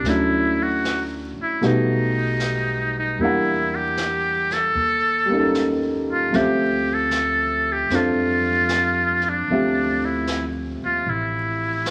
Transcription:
Already playing: D4
0.03 D2 F#3 A3 C#4 D4 E4, brush sweep, snare
0.09 E4
0.63 F#4
0.85 snare, hi-hat pedal
1.37 muted upright bass stroke
1.42 E4
1.61 B1 G3 A3 B3 D#4 F#4, brush sweep, snare
1.67 D#4
2.40 snare, hi-hat pedal
2.98 D#4
3.18 E2 G3 A#3 D4 E4, brush sweep
3.23 E4 F#5
3.75 G4
3.97 snare, hi-hat pedal
4.51 A4, snare
4.75 D#2, brush sweep
5.25 G3 A#3
5.31 C#4 D#4
5.37 A4
5.55 snare, hi-hat pedal
6.12 F4
6.32 D2 F3 A3 C4 G4 E5, brush sweep, snare
6.37 G4
6.94 A4
7.11 snare, hi-hat pedal
7.72 G4
7.89 F2 C4 D4 F4, brush sweep, snare
7.95 F4 A4
8.69 snare, hi-hat pedal
9.21 snare
9.29 D4
9.48 D2 F3 A3 C4 E5, brush sweep
9.52 G4
10.05 E4
10.27 snare, hi-hat pedal
10.82 D#2 F4
11.06 A1 E4, brush sweep
11.86 snare, hi-hat pedal

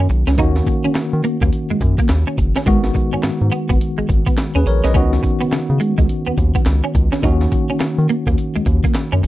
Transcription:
Already playing: D#3 A#3 C#4 F#4
0.09 B1, muted clean electric guitar stroke, closed hi-hat
0.27 C#2 C#4, snare, closed hi-hat
0.37 D#2 D#3 A#3 C#4 D#4 F#4, kick, closed hi-hat
0.56 snare
0.67 muted clean electric guitar stroke, kick, closed hi-hat
0.84 D#3 C#4, closed hi-hat
0.95 D#3, muted clean electric guitar stroke, snare, clap, closed hi-hat
1.13 D#3
1.24 A#3, closed hi-hat
1.41 D#2 A#3, kick, closed hi-hat
1.53 closed hi-hat
1.70 F#2 G#3
1.81 F#2, muted clean electric guitar stroke, kick, closed hi-hat
1.98 A#3, kick, closed hi-hat
2.09 D#2, snare, clap, closed hi-hat
2.27 C#4
2.38 F#1, muted clean electric guitar stroke, kick, closed hi-hat
2.56 C#4, snare, closed hi-hat
2.66 G#1 D#3 G#3 B3 F#4, kick, closed hi-hat
2.84 snare
2.94 muted clean electric guitar stroke, kick, closed hi-hat
3.12 G#2 C#4, closed hi-hat
3.23 G#2, muted clean electric guitar stroke, snare, clap, closed hi-hat
3.41 G#2
3.52 B3, closed hi-hat
3.69 G#1 B3, kick, closed hi-hat
3.81 closed hi-hat
3.98 G#1 G#3
4.09 G#1, muted clean electric guitar stroke, kick, closed hi-hat
4.26 B3, kick, closed hi-hat
4.37 snare, clap, closed hi-hat
4.55 D#2 C#4 G#4 B4
4.66 A#1 A#4 C#5, muted clean electric guitar stroke, closed hi-hat
4.84 B1 C#4 B4 D#5, snare, closed hi-hat
4.94 C#2 D#3 B3 C#4 F#4, kick, closed hi-hat
5.13 snare
5.23 muted clean electric guitar stroke, kick, closed hi-hat
5.41 C#3 B3, closed hi-hat
5.52 C#3, muted clean electric guitar stroke, snare, clap, closed hi-hat
5.70 C#3
5.80 G#3, closed hi-hat
5.98 C#2 G#3, kick, closed hi-hat
6.09 closed hi-hat
6.26 D#2 B3
6.38 D#2, muted clean electric guitar stroke, kick, closed hi-hat
6.55 B3, kick, closed hi-hat
6.66 C#2, snare, clap, closed hi-hat
6.84 C#4
6.95 C#2, muted clean electric guitar stroke, kick, closed hi-hat
7.12 C#4, snare, closed hi-hat
7.23 D#2 D#3 A#3 C#4 D#4 F#4, kick, closed hi-hat, shaker
7.41 snare, shaker
7.52 muted clean electric guitar stroke, kick, closed hi-hat, shaker
7.69 D#3 C#4, closed hi-hat, shaker
7.80 D#3, muted clean electric guitar stroke, snare, clap, closed hi-hat, shaker
7.98 D#3, shaker
8.09 A#3, closed hi-hat, shaker
8.27 D#2 A#3, kick, closed hi-hat, shaker
8.38 closed hi-hat, shaker
8.55 D#2 G#3, shaker
8.66 D#2, muted clean electric guitar stroke, kick, closed hi-hat
8.84 A#3, kick, closed hi-hat, shaker
8.94 snare, clap, closed hi-hat, shaker
9.12 F#2 C#4, shaker
9.23 B1, muted clean electric guitar stroke, closed hi-hat, shaker

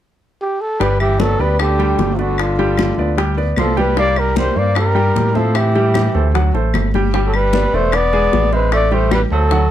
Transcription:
0.41 G4
0.61 A4
0.80 G1 G3 G4 B4 G5, high bongo, high conga
1.00 E3 G4, high bongo, high conga, claves
1.19 F#3 B3 A4 B4 D5, high bongo, high conga
1.39 D2 G3 B3 B4 D5, high conga
1.59 D3 G4, high bongo, high conga, claves
1.79 G3 G4 G5, high bongo, high conga
1.99 G1, high bongo, low bongo, high conga
2.14 C3 F4
2.19 D3 B3 F#4 B4 D5, high bongo
2.38 D3 F4, high bongo, high conga, claves
2.59 G3 G4 G5, high bongo, high conga
2.78 high bongo, high conga, claves
2.98 D2 B3 B4 D5, high conga
3.17 G3 G4 G5, high bongo, high conga
3.37 B3 B4 D5, high bongo, high conga
3.56 C2 F3 A4, high bongo, low bongo, high conga, claves
3.77 G3 G4 B4 G5, high bongo, high conga
3.97 G3 A#3 G4 D5 G5, high bongo, high conga
4.16 G3 A#4, high bongo, high conga, claves
4.36 G3 A#3 A#4 C5, high bongo, high conga
4.56 G2 A#3 A#4 C5 D5, high conga
4.75 G3 A#4, high bongo, high conga, claves
4.95 G3 G4 G5, high bongo, high conga
5.16 A2, high bongo, low bongo, high conga
5.34 F3 C4 A4 C5 E5, high bongo, high conga
5.55 E3 G4, high bongo, high conga, claves
5.75 G3 G4 G5, high bongo, high conga
5.94 high bongo, high conga, claves
6.14 D2 A3 A4 C5, high conga
6.34 F#3 F#4 F#5, high bongo, high conga
6.54 A1 A3 A4 C5, high bongo, high conga
6.74 G1, high bongo, low bongo, high conga, claves
6.94 G3 G4 G5, high bongo, high conga
7.14 G3 G4 G5, high bongo, high conga
7.26 F#3 A4
7.33 G3 B4, high bongo, high conga, claves
7.53 B3 B4 D5, high bongo, high conga
7.74 E1 A3 B3 B4 C5 D5, high conga
7.92 B3 D5, high bongo, high conga, claves
8.13 G#3 G#4 G#5, high bongo, high conga
8.33 A1, high bongo, low bongo, high conga
8.52 G#3 C4 B4 C5 E5, high bongo
8.72 A3 D5, high bongo, high conga, claves
8.91 G3 A3 G4 C5 G5, high bongo, high conga
9.11 G3 B4, high bongo, high conga, claves
9.31 D2 F#3 A3 A4 C5, high conga
9.51 F#3 F#4 F#5, high bongo, high conga

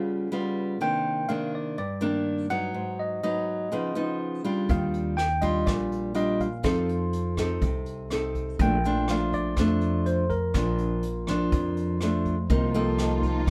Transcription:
Already playing: C#3 G3 B3 F4 F5
0.32 G3 B3 F4
0.81 C3 D#3 A#3 D4 G5
1.29 D#3 A#3 D4 F5
1.55 D5
1.78 G2 D5
2.01 D#3 A#3 D4
2.50 F#3 B3 D#4 F#5
2.74 G#2
2.99 D#5
3.23 F#3 B3 D#4 D#5
3.72 C#3 F3 B3 D#4
3.95 F3 B3 D#4
4.45 G3 D4 F4
4.69 D#2 D#3 F5, kick, closed hi-hat
4.94 closed hi-hat
5.17 G5, cross-stick, closed hi-hat
5.42 G3 D4 F4 D#5, kick, closed hi-hat
5.66 A#1 A#2 D5, kick, cross-stick, closed hi-hat
5.92 closed hi-hat
6.15 G3 D4 F4 D#5, closed hi-hat
6.40 F5, kick, closed hi-hat
6.63 F2 F3 C4 D#4 A4, kick, cross-stick, closed hi-hat
6.89 closed hi-hat
7.13 closed hi-hat
7.37 C4 D#4 A4, kick, cross-stick, closed hi-hat
7.62 C2 C3, kick, closed hi-hat
7.86 closed hi-hat
8.10 C4 D#4 A4, cross-stick, closed hi-hat
8.35 kick, closed hi-hat
8.59 A#1 A#2 F3 A3 D4 G5, kick, closed hi-hat
8.84 F3 A3 D4, closed hi-hat
9.08 F3 A3 D4 F5, cross-stick, closed hi-hat
9.33 D5, kick, closed hi-hat
9.57 F2 F3 A3 D4, kick, cross-stick, closed hi-hat
9.81 closed hi-hat
10.06 C5, closed hi-hat
10.30 A#4, kick, closed hi-hat
10.54 A#1 A#2 F3 D4, kick, cross-stick, closed hi-hat
10.78 closed hi-hat
11.03 closed hi-hat
11.27 F3 D4, kick, cross-stick, closed hi-hat
11.52 F2, kick, closed hi-hat
11.77 closed hi-hat
12.01 F3 A3 D4, cross-stick, closed hi-hat
12.25 kick, closed hi-hat
12.50 C2 C3 F3 A#3 D#4 F4 A#4 D#5, kick, closed hi-hat
12.68 G5
12.74 F3 A#3 D#4 A4, closed hi-hat
12.86 A5
12.98 cross-stick, closed hi-hat
13.23 kick, closed hi-hat

